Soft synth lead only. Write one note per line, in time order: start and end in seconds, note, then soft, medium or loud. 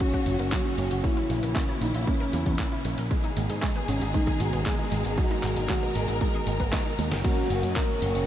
0.01 0.54 C#4 medium
0.53 1.06 F#4 loud
1.04 1.81 E4 loud
1.82 1.93 D#4 medium
2.08 2.81 C#4 medium
3.89 4.00 C#4 medium
4.14 4.42 D#4 loud
4.41 4.68 F#4 loud
4.66 5.19 G#4 loud
5.18 5.69 F#4 loud
5.69 5.97 F#4 loud
5.95 6.73 G#4 loud
7.24 7.78 F#4 loud
7.76 8.27 A#4 loud